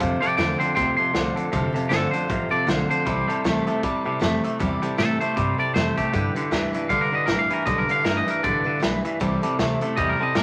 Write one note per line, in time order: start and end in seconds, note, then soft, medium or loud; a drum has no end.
0.00 0.20 F2 medium
0.00 0.22 F2 medium
0.00 0.20 C3 medium
0.00 0.22 D3 medium
0.00 0.22 F3 medium
0.00 0.22 C4 medium
0.00 0.22 F4 loud
0.00 0.21 A4 medium
0.00 0.22 C5 medium
0.00 kick loud
0.00 closed hi-hat medium
0.21 0.37 F2 medium
0.21 0.37 C3 medium
0.21 0.37 C4 soft
0.21 0.38 F4 soft
0.21 0.38 A4 medium
0.21 0.38 C5 medium
0.21 0.35 D5 medium
0.21 0.36 G5 medium
0.21 muted upright bass stroke medium
0.21 closed hi-hat medium
0.37 0.60 E2 medium
0.37 0.58 F2 medium
0.37 0.61 D3 medium
0.37 0.59 D3 medium
0.37 0.61 F3 medium
0.37 0.61 C4 medium
0.37 0.61 F4 medium
0.37 0.59 A4 medium
0.37 0.60 C5 medium
0.37 0.58 D5 medium
0.37 0.58 G5 loud
0.37 snare loud
0.37 closed hi-hat medium
0.59 0.75 F2 medium
0.59 0.75 D3 medium
0.59 0.75 F4 soft
0.59 0.77 A4 medium
0.59 0.76 C5 medium
0.59 0.74 G5 medium
0.59 0.74 C6 medium
0.59 closed hi-hat medium
0.63 0.74 C4 soft
0.75 0.98 D2 medium
0.75 0.97 F2 medium
0.75 0.97 C3 medium
0.75 0.98 C4 medium
0.75 0.99 F4 medium
0.75 0.97 A4 medium
0.75 0.98 C5 medium
0.75 0.96 G5 medium
0.75 0.95 C6 medium
0.75 kick loud
0.75 closed hi-hat medium
0.97 1.12 F2 medium
0.97 1.13 C3 medium
0.97 1.15 F4 soft
0.97 1.14 A4 medium
0.97 1.14 C5 soft
0.97 1.72 C6 medium
0.97 muted upright bass stroke medium
1.01 1.14 C4 soft
1.13 1.36 C2 loud
1.13 1.34 F2 medium
1.13 1.35 D3 loud
1.13 1.37 D3 medium
1.13 1.37 F3 medium
1.13 1.36 C4 medium
1.13 1.35 F4 medium
1.13 1.33 A4 medium
1.13 1.35 C5 medium
1.13 snare loud
1.13 closed hi-hat medium
1.34 1.51 F2 medium
1.34 1.51 D3 medium
1.34 1.52 C4 soft
1.34 1.52 F4 soft
1.34 1.52 A4 soft
1.34 1.52 C5 soft
1.34 closed hi-hat medium
1.52 1.74 F1 medium
1.52 1.73 F2 medium
1.52 1.73 C3 medium
1.52 1.75 D3 medium
1.52 1.75 F3 medium
1.52 1.75 C4 loud
1.52 1.74 F4 medium
1.52 1.73 A4 loud
1.52 1.73 C5 medium
1.52 kick loud
1.52 closed hi-hat medium
1.74 1.89 F2 medium
1.74 1.89 C3 medium
1.74 1.89 C4 medium
1.74 1.89 F4 medium
1.74 1.90 A4 medium
1.74 1.90 C5 medium
1.74 muted upright bass stroke medium
1.74 closed hi-hat medium
1.89 2.12 G1 medium
1.89 2.11 F2 medium
1.89 2.13 D3 medium
1.89 2.11 D3 medium
1.89 2.13 F3 medium
1.89 2.13 C4 medium
1.89 2.13 F4 medium
1.89 2.11 A4 loud
1.89 2.11 A4 medium
1.89 2.12 C5 loud
1.89 snare loud
1.89 closed hi-hat medium
2.11 2.28 F2 medium
2.11 2.28 D3 medium
2.11 2.27 C4 soft
2.11 2.28 F4 medium
2.11 2.29 A4 medium
2.11 2.50 C5 medium
2.11 2.29 C5 soft
2.11 muted upright bass stroke medium
2.11 closed hi-hat medium
2.28 2.50 A1 medium
2.28 2.49 F2 medium
2.28 2.50 C3 loud
2.28 2.51 C4 medium
2.28 2.51 F4 medium
2.28 2.49 A4 medium
2.28 2.50 C5 medium
2.28 kick loud
2.28 closed hi-hat medium
2.50 2.65 F2 medium
2.50 2.66 C3 medium
2.50 2.66 C4 soft
2.50 2.67 F4 soft
2.50 2.67 A4 medium
2.50 2.67 C5 medium
2.50 2.69 D5 medium
2.50 muted upright bass stroke medium
2.67 2.89 B1 medium
2.67 2.88 F2 medium
2.67 2.90 D3 medium
2.67 2.88 D3 loud
2.67 2.90 F3 medium
2.67 2.90 C4 medium
2.67 2.90 F4 medium
2.67 2.88 A4 medium
2.67 2.89 C5 medium
2.67 snare loud
2.67 closed hi-hat medium
2.89 3.04 F2 medium
2.89 3.04 D3 medium
2.89 3.06 C4 soft
2.89 3.06 F4 soft
2.89 3.06 A4 medium
2.89 3.06 C5 medium
2.89 3.65 C5 loud
2.89 muted upright bass stroke medium
2.89 closed hi-hat medium
3.05 3.28 C2 medium
3.05 3.26 C3 medium
3.05 3.28 C3 medium
3.05 3.28 E3 medium
3.05 3.26 G3 medium
3.05 3.29 G3 medium
3.05 3.28 C4 medium
3.05 3.28 E4 medium
3.05 3.27 A4 loud
3.05 kick loud
3.05 closed hi-hat medium
3.28 3.43 C3 medium
3.28 3.43 G3 medium
3.28 3.44 G3 soft
3.28 3.44 C4 soft
3.28 3.44 E4 medium
3.28 3.45 A4 medium
3.28 closed hi-hat medium
3.44 3.66 D2 medium
3.44 3.67 C3 loud
3.44 3.65 C3 medium
3.44 3.67 E3 loud
3.44 3.67 G3 medium
3.44 3.65 A3 medium
3.44 3.67 C4 loud
3.44 3.66 E4 medium
3.44 3.65 A4 loud
3.44 snare loud
3.44 closed hi-hat medium
3.66 3.82 C3 medium
3.66 3.82 G3 medium
3.66 3.82 A3 medium
3.66 3.83 C4 medium
3.66 3.83 E4 medium
3.66 3.83 A4 medium
3.66 closed hi-hat medium
3.83 4.03 C3 medium
3.83 4.06 G3 medium
3.83 4.04 G3 loud
3.83 4.05 C4 medium
3.83 4.04 E4 medium
3.83 4.03 A4 medium
3.83 kick loud
3.83 closed hi-hat medium
4.04 4.20 C3 medium
4.04 4.20 G3 medium
4.04 4.19 G3 medium
4.04 4.20 C4 medium
4.04 4.20 E4 medium
4.04 4.20 A4 medium
4.04 muted upright bass stroke soft
4.19 4.43 F2 medium
4.19 4.43 C3 loud
4.19 4.42 C3 medium
4.19 4.43 E3 medium
4.19 4.43 G3 loud
4.19 4.42 A3 loud
4.19 4.44 C4 medium
4.19 4.43 E4 loud
4.19 4.42 A4 medium
4.19 snare loud
4.19 closed hi-hat medium
4.43 4.58 C3 medium
4.43 4.59 G3 medium
4.43 4.59 A3 medium
4.43 4.59 C4 medium
4.43 4.59 E4 soft
4.43 4.60 A4 medium
4.43 closed hi-hat medium
4.59 4.82 E2 medium
4.59 4.82 C3 medium
4.59 4.80 C3 medium
4.59 4.82 E3 loud
4.59 4.80 G3 medium
4.59 4.82 G3 medium
4.59 4.83 C4 medium
4.59 4.81 E4 loud
4.59 4.81 A4 loud
4.59 kick loud
4.59 closed hi-hat medium
4.82 4.97 C3 medium
4.82 4.97 G3 medium
4.82 4.98 G3 soft
4.82 4.98 C4 medium
4.82 4.98 E4 medium
4.82 4.98 A4 medium
4.82 closed hi-hat medium
4.98 5.20 A2 medium
4.98 5.20 C3 medium
4.98 5.18 C3 medium
4.98 5.20 E3 medium
4.98 5.21 G3 medium
4.98 5.18 A3 medium
4.98 5.20 C4 medium
4.98 5.19 E4 medium
4.98 5.20 A4 loud
4.98 5.18 A4 medium
4.98 snare loud
4.98 closed hi-hat medium
5.20 5.35 C3 medium
5.20 5.34 G3 soft
5.20 5.35 A3 medium
5.20 5.36 C4 soft
5.20 5.36 E4 soft
5.20 5.36 A4 medium
5.20 5.58 C5 medium
5.20 closed hi-hat medium
5.35 5.58 G2 medium
5.35 5.56 C3 loud
5.35 5.58 G3 medium
5.35 5.57 G3 loud
5.35 5.59 C4 medium
5.35 5.57 E4 medium
5.35 5.57 A4 medium
5.35 kick loud
5.35 closed hi-hat medium
5.58 5.73 C3 medium
5.58 5.73 G3 medium
5.58 5.73 G3 soft
5.58 5.75 C4 soft
5.58 5.74 E4 medium
5.58 5.75 A4 medium
5.58 5.74 D5 medium
5.58 muted upright bass stroke medium
5.74 5.97 F2 medium
5.74 5.97 C3 medium
5.74 5.95 C3 medium
5.74 5.97 E3 medium
5.74 5.97 G3 medium
5.74 5.96 A3 loud
5.74 5.97 C4 medium
5.74 5.96 E4 medium
5.74 5.96 A4 medium
5.74 5.96 C5 loud
5.74 snare loud
5.74 closed hi-hat medium
5.97 6.12 C3 medium
5.97 6.12 G3 soft
5.97 6.12 A3 medium
5.97 6.14 C4 soft
5.97 6.13 E4 soft
5.97 6.72 G4 medium
5.97 6.13 A4 soft
5.97 kick medium
5.97 closed hi-hat medium
6.13 6.33 G2 medium
6.13 6.34 G2 medium
6.13 6.33 D3 medium
6.13 6.36 G3 medium
6.13 6.36 D4 medium
6.13 6.35 E4 medium
6.13 6.33 B4 medium
6.13 kick loud
6.13 closed hi-hat medium
6.35 6.50 G2 medium
6.35 6.51 D3 medium
6.35 6.51 D4 soft
6.35 6.52 E4 soft
6.35 6.51 B4 medium
6.35 muted upright bass stroke medium
6.35 closed hi-hat medium
6.51 6.73 D2 medium
6.51 6.72 G2 medium
6.51 6.72 E3 medium
6.51 6.74 G3 loud
6.51 6.74 D4 medium
6.51 6.73 E4 loud
6.51 6.71 B4 loud
6.51 snare loud
6.51 closed hi-hat medium
6.73 6.88 G2 medium
6.73 6.89 E3 medium
6.73 6.89 D4 soft
6.73 6.89 E4 medium
6.73 6.89 B4 medium
6.73 muted upright bass stroke medium
6.73 closed hi-hat medium
6.89 7.10 G2 medium
6.89 7.10 D3 loud
6.89 7.12 G3 medium
6.89 7.12 D4 medium
6.89 7.11 E4 medium
6.89 7.10 B4 medium
6.89 7.02 F5 loud
6.89 kick loud
6.89 closed hi-hat medium
7.01 7.14 A#4 medium
7.11 7.26 G2 medium
7.11 7.27 D3 medium
7.11 7.27 D4 soft
7.11 7.27 E4 soft
7.11 7.28 B4 medium
7.11 7.28 D#5 medium
7.26 7.49 A1 loud
7.26 7.48 G2 medium
7.26 7.48 E3 medium
7.26 7.50 G3 medium
7.26 7.51 D4 medium
7.26 7.50 E4 medium
7.26 7.39 A#4 loud
7.26 7.49 B4 medium
7.26 snare loud
7.26 closed hi-hat medium
7.39 7.52 F5 loud
7.50 7.65 G2 medium
7.50 7.65 E3 medium
7.50 7.65 D4 soft
7.50 7.65 E4 soft
7.50 7.66 A#4 medium
7.50 7.66 B4 medium
7.50 muted upright bass stroke medium
7.50 closed hi-hat medium
7.65 7.88 B1 medium
7.65 7.87 G2 medium
7.65 7.87 D3 medium
7.65 7.88 G3 medium
7.65 7.89 D4 medium
7.65 7.88 E4 medium
7.65 7.86 B4 medium
7.65 7.79 D#5 loud
7.65 kick loud
7.65 closed hi-hat medium
7.78 7.91 A#4 medium
7.88 8.04 G2 medium
7.88 8.04 D3 medium
7.88 8.04 D4 soft
7.88 8.04 E4 medium
7.88 8.04 B4 medium
7.88 8.04 F5 loud
7.88 closed hi-hat medium
8.03 8.26 G1 loud
8.03 8.25 G2 medium
8.03 8.25 E3 medium
8.03 8.27 G3 medium
8.03 8.27 D4 medium
8.03 8.27 E4 medium
8.03 8.17 A#4 loud
8.03 8.25 B4 medium
8.03 snare loud
8.03 closed hi-hat medium
8.17 8.30 D#5 medium
8.26 8.42 G2 medium
8.26 8.42 E3 medium
8.26 8.42 D4 soft
8.26 8.43 E4 soft
8.26 8.43 A#4 medium
8.26 8.43 B4 medium
8.26 closed hi-hat medium
8.42 8.65 A1 medium
8.42 8.63 G2 medium
8.42 8.64 D3 medium
8.42 8.65 G3 medium
8.42 8.65 D4 medium
8.42 8.64 E4 medium
8.42 8.63 B4 medium
8.42 8.81 D5 medium
8.42 kick loud
8.42 closed hi-hat medium
8.64 8.80 G2 medium
8.64 8.80 D3 medium
8.64 8.79 D4 soft
8.64 8.80 E4 medium
8.64 8.80 B4 medium
8.80 9.04 B1 medium
8.80 9.02 G2 medium
8.80 9.02 E3 medium
8.80 9.03 G3 medium
8.80 9.03 D4 medium
8.80 9.03 E4 medium
8.80 9.01 B4 medium
8.80 snare loud
8.80 closed hi-hat medium
9.03 9.19 G2 medium
9.03 9.19 E3 medium
9.03 9.20 D4 soft
9.03 9.20 E4 soft
9.03 9.19 B4 medium
9.03 closed hi-hat medium
9.20 9.42 C2 medium
9.20 9.42 C3 medium
9.20 9.41 C3 medium
9.20 9.42 E3 loud
9.20 9.42 G3 medium
9.20 9.41 G3 medium
9.20 9.42 C4 loud
9.20 9.42 E4 loud
9.20 9.40 A4 medium
9.20 kick loud
9.20 closed hi-hat medium
9.42 9.57 C3 medium
9.42 9.57 G3 medium
9.42 9.59 G3 soft
9.42 9.59 C4 medium
9.42 9.59 E4 medium
9.42 9.58 A4 medium
9.42 closed hi-hat medium
9.59 9.80 D2 medium
9.59 9.79 C3 medium
9.59 9.81 C3 loud
9.59 9.81 E3 medium
9.59 9.81 G3 medium
9.59 9.79 A3 medium
9.59 9.82 C4 loud
9.59 9.81 E4 loud
9.59 9.80 A4 loud
9.59 snare loud
9.59 closed hi-hat medium
9.81 9.96 C3 medium
9.81 9.95 G3 soft
9.81 9.96 A3 medium
9.81 9.97 C4 medium
9.81 9.98 E4 medium
9.81 9.97 A4 medium
9.81 muted upright bass stroke medium
9.81 closed hi-hat medium
9.96 10.19 E2 medium
9.96 10.17 C3 medium
9.96 10.19 G3 medium
9.96 10.18 G3 loud
9.96 10.20 C4 medium
9.96 10.18 A4 medium
9.96 10.09 D#5 loud
9.96 kick loud
9.96 closed hi-hat medium
10.09 10.22 A#4 loud
10.19 10.34 C3 medium
10.19 10.34 G3 medium
10.19 10.35 G3 soft
10.19 10.36 C4 soft
10.19 10.36 E4 soft
10.19 10.35 A4 medium
10.19 10.35 D#5 medium
10.35 10.43 A2 loud
10.35 10.43 C3 medium
10.35 10.43 E3 medium
10.35 10.43 G3 medium
10.35 10.43 A3 medium
10.35 10.43 C4 medium
10.35 10.43 E4 loud
10.35 10.43 A4 medium
10.35 10.43 A#4 medium
10.35 snare loud
10.35 closed hi-hat medium